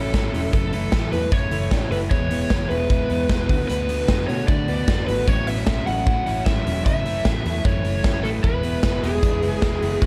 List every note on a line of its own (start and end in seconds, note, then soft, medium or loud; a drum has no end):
0.00 0.11 A1 medium
0.00 0.53 A2 medium
0.00 0.12 F#3 soft
0.00 0.57 F#3 soft
0.00 0.13 C#4 soft
0.00 0.13 E4 soft
0.00 0.14 E4 medium
0.00 0.52 A4 medium
0.13 0.31 G#1 medium
0.13 0.33 A2 medium
0.13 0.33 F#3 medium
0.13 0.33 C#4 medium
0.13 0.32 E4 medium
0.13 kick medium
0.13 snare medium
0.13 closed hi-hat medium
0.33 0.50 E1 medium
0.33 0.53 F#3 soft
0.33 0.53 C#4 soft
0.33 0.52 E4 medium
0.33 open hi-hat medium
0.52 0.87 F#1 loud
0.52 0.73 F#2 medium
0.52 0.73 C#3 medium
0.52 0.73 E3 medium
0.52 0.72 A3 medium
0.52 0.71 E4 medium
0.52 1.09 A4 medium
0.52 kick medium
0.52 closed hi-hat medium
0.72 0.92 E3 soft
0.72 0.92 A3 soft
0.72 0.92 E4 soft
0.72 open hi-hat medium
0.92 1.09 A1 medium
0.92 1.12 F#2 medium
0.92 1.12 C#3 medium
0.92 1.13 E3 medium
0.92 1.11 A3 medium
0.92 1.10 E4 medium
0.92 kick medium
0.92 snare loud
0.92 closed hi-hat medium
1.11 1.29 E2 medium
1.11 1.30 E3 soft
1.11 1.31 A3 soft
1.11 1.32 E4 soft
1.11 1.32 B4 medium
1.11 open hi-hat medium
1.31 1.49 F#2 medium
1.31 1.51 C#3 medium
1.31 1.52 E3 medium
1.31 1.51 A3 medium
1.31 1.50 E4 medium
1.31 1.91 C#5 medium
1.31 kick loud
1.31 closed hi-hat medium
1.51 1.68 F#1 medium
1.51 1.71 E3 soft
1.51 1.71 A3 soft
1.51 1.71 E4 soft
1.51 open hi-hat medium
1.71 1.88 A1 medium
1.71 1.91 F#2 medium
1.71 1.91 C#3 medium
1.71 1.91 E3 medium
1.71 1.90 A3 medium
1.71 1.81 D4 medium
1.71 1.89 E4 medium
1.71 kick loud
1.71 snare medium
1.71 closed hi-hat medium
1.81 2.15 E4 medium
1.90 2.08 F#1 medium
1.90 2.09 E3 soft
1.90 2.11 A3 soft
1.90 2.10 E4 soft
1.90 1.97 B4 medium
1.90 open hi-hat medium
2.10 2.45 E1 loud
2.10 2.30 E3 medium
2.10 2.31 G#3 medium
2.10 2.30 B3 medium
2.10 2.28 E4 medium
2.10 2.69 C#5 medium
2.10 kick medium
2.10 closed hi-hat medium
2.30 2.49 G#3 soft
2.30 2.50 B3 soft
2.30 2.50 E4 soft
2.30 open hi-hat medium
2.50 2.68 F#1 medium
2.50 2.70 E3 medium
2.50 2.70 G#3 medium
2.50 2.70 B3 medium
2.50 2.69 E4 medium
2.50 kick loud
2.50 snare loud
2.69 3.04 E1 medium
2.69 2.89 G#3 soft
2.69 2.90 B3 soft
2.69 2.90 E4 soft
2.69 3.67 B4 medium
2.69 open hi-hat medium
2.89 3.09 E3 medium
2.89 3.10 G#3 medium
2.89 3.09 B3 medium
2.89 3.08 E4 medium
2.89 kick loud
2.89 closed hi-hat medium
3.09 3.27 E2 medium
3.09 3.28 G#3 soft
3.09 3.28 B3 soft
3.09 3.29 E4 soft
3.09 open hi-hat medium
3.29 3.46 E1 medium
3.29 3.49 E3 medium
3.29 3.49 G#3 medium
3.29 3.48 B3 medium
3.29 3.48 E4 medium
3.29 kick loud
3.29 snare loud
3.29 closed hi-hat medium
3.48 3.66 D2 medium
3.48 3.68 D3 medium
3.48 3.68 A3 soft
3.48 3.68 B3 soft
3.48 3.69 F#4 medium
3.48 kick medium
3.48 open hi-hat medium
3.68 4.03 D2 medium
3.68 3.88 D3 medium
3.68 3.89 A3 medium
3.68 3.88 B3 medium
3.68 3.86 F#4 medium
3.68 4.27 B4 medium
3.68 closed hi-hat medium
3.87 4.07 A3 soft
3.87 4.08 B3 soft
3.87 4.08 F#4 soft
3.87 open hi-hat medium
4.08 4.26 F#2 medium
4.08 4.28 D3 medium
4.08 4.28 A3 medium
4.08 4.28 B3 medium
4.08 4.26 F#4 medium
4.08 kick loud
4.08 snare loud
4.08 closed hi-hat medium
4.27 4.46 B2 medium
4.27 4.48 A3 soft
4.27 4.48 B3 soft
4.27 4.48 F#4 medium
4.27 4.47 C#5 medium
4.27 open hi-hat medium
4.48 4.68 D3 medium
4.48 4.65 D3 medium
4.48 4.68 A3 medium
4.48 4.68 B3 medium
4.48 4.59 E4 medium
4.48 4.67 F#4 medium
4.48 5.03 D5 medium
4.48 kick loud
4.48 closed hi-hat medium
4.59 4.88 F#4 medium
4.68 4.85 D2 medium
4.68 4.87 A3 soft
4.68 4.87 B3 soft
4.68 4.88 F#4 soft
4.68 open hi-hat medium
4.87 5.05 F#2 medium
4.87 5.07 D3 medium
4.87 5.08 A3 medium
4.87 5.07 B3 medium
4.87 5.06 F#4 medium
4.87 kick loud
4.87 snare medium
4.87 closed hi-hat medium
5.07 5.25 G#1 medium
5.07 5.28 A3 soft
5.07 5.28 B3 soft
5.07 5.27 F#4 soft
5.07 5.28 B4 medium
5.07 open hi-hat medium
5.28 5.61 A1 loud
5.28 5.47 A2 medium
5.28 5.48 F#3 medium
5.28 5.47 C#4 medium
5.28 5.46 E4 medium
5.28 5.47 C#5 medium
5.28 kick loud
5.28 closed hi-hat medium
5.47 5.66 F#3 soft
5.47 5.58 B3 medium
5.47 5.67 C#4 soft
5.47 5.67 E4 soft
5.47 5.86 E5 medium
5.47 open hi-hat medium
5.58 6.26 C#4 soft
5.67 5.84 B1 medium
5.67 5.87 A2 medium
5.67 5.87 F#3 medium
5.67 5.87 C#4 medium
5.67 5.86 E4 medium
5.67 kick medium
5.67 snare loud
5.67 closed hi-hat medium
5.87 6.04 A1 medium
5.87 6.06 F#3 soft
5.87 6.07 C#4 soft
5.87 6.07 E4 soft
5.87 6.25 F#5 loud
5.87 open hi-hat medium
6.06 6.26 A2 medium
6.06 6.24 A2 medium
6.06 6.27 F#3 medium
6.06 6.26 C#4 medium
6.06 6.25 E4 medium
6.06 kick loud
6.06 closed hi-hat medium
6.26 6.44 A1 medium
6.26 6.45 F#3 soft
6.26 6.45 C#4 soft
6.26 6.46 E4 medium
6.26 6.45 F#5 medium
6.26 open hi-hat medium
6.46 6.63 G#1 medium
6.46 6.66 A2 medium
6.46 6.66 F#3 medium
6.46 6.65 C#4 medium
6.46 6.64 E4 medium
6.46 6.83 E5 medium
6.46 kick loud
6.46 snare medium
6.46 closed hi-hat medium
6.65 6.86 E1 medium
6.65 6.86 F#3 soft
6.65 6.86 C#4 soft
6.65 6.85 E4 soft
6.65 open hi-hat medium
6.85 7.19 F#1 medium
6.85 7.05 F#2 medium
6.85 7.05 C#3 medium
6.85 7.06 E3 medium
6.85 7.05 A3 medium
6.85 7.04 E4 medium
6.85 7.67 E5 loud
6.85 kick medium
6.85 closed hi-hat medium
7.05 7.25 E3 soft
7.05 7.26 A3 soft
7.05 7.25 E4 medium
7.05 open hi-hat medium
7.25 7.42 A1 medium
7.25 7.45 F#2 medium
7.25 7.45 C#3 medium
7.25 7.46 E3 medium
7.25 7.44 A3 medium
7.25 7.43 E4 medium
7.25 kick loud
7.25 snare loud
7.25 closed hi-hat medium
7.44 7.62 E2 medium
7.44 7.64 E3 soft
7.44 7.65 A3 soft
7.44 7.65 E4 medium
7.44 open hi-hat medium
7.64 7.82 F#2 medium
7.64 7.84 C#3 medium
7.64 7.84 E3 medium
7.64 7.83 A3 medium
7.64 7.82 E4 medium
7.64 8.26 C#5 medium
7.64 kick loud
7.64 closed hi-hat medium
7.83 8.24 F#1 medium
7.83 8.03 E3 soft
7.83 8.03 A3 soft
7.83 8.04 E4 medium
7.83 open hi-hat medium
8.03 8.24 F#2 medium
8.03 8.24 C#3 medium
8.03 8.24 E3 medium
8.03 8.23 A3 medium
8.03 8.22 E4 medium
8.03 kick loud
8.03 snare loud
8.03 closed hi-hat medium
8.23 8.41 A1 medium
8.23 8.42 E3 soft
8.23 8.44 A3 soft
8.23 8.44 E4 soft
8.23 8.29 A4 medium
8.23 open hi-hat medium
8.43 8.78 E1 loud
8.43 8.63 E3 medium
8.43 8.64 G#3 medium
8.43 8.63 B3 medium
8.43 8.61 E4 medium
8.43 9.05 B4 medium
8.43 kick loud
8.43 closed hi-hat medium
8.63 8.82 G#3 soft
8.63 8.82 B3 soft
8.63 8.82 E4 medium
8.63 open hi-hat medium
8.82 9.00 F#1 loud
8.82 9.03 E3 medium
8.82 9.03 G#3 medium
8.82 9.02 B3 medium
8.82 9.01 E4 medium
8.82 kick loud
8.82 snare loud
8.82 closed hi-hat medium
9.02 9.20 E1 medium
9.02 9.22 G#3 soft
9.02 9.22 B3 soft
9.02 9.22 E4 medium
9.02 10.02 G#4 medium
9.02 open hi-hat medium
9.22 9.40 E2 loud
9.22 9.42 E3 medium
9.22 9.42 G#3 medium
9.22 9.42 B3 medium
9.22 9.33 D4 medium
9.22 9.40 E4 medium
9.22 kick loud
9.22 closed hi-hat medium
9.33 9.61 E4 medium
9.42 9.59 F#1 medium
9.42 9.61 G#3 soft
9.42 9.61 B3 soft
9.42 9.62 E4 medium
9.42 open hi-hat medium
9.61 9.79 E1 medium
9.61 9.82 E3 medium
9.61 9.82 G#3 medium
9.61 9.81 B3 medium
9.61 9.80 E4 medium
9.61 kick loud
9.61 snare medium
9.61 closed hi-hat medium
9.81 9.99 F#1 medium
9.81 10.00 G#3 soft
9.81 10.01 B3 medium
9.81 10.01 E4 medium
9.81 open hi-hat medium
10.01 10.06 E1 medium
10.01 10.06 E3 medium
10.01 10.06 G#3 medium
10.01 10.06 B3 medium
10.01 10.06 E4 medium
10.01 10.06 F#4 medium
10.01 kick loud
10.01 closed hi-hat medium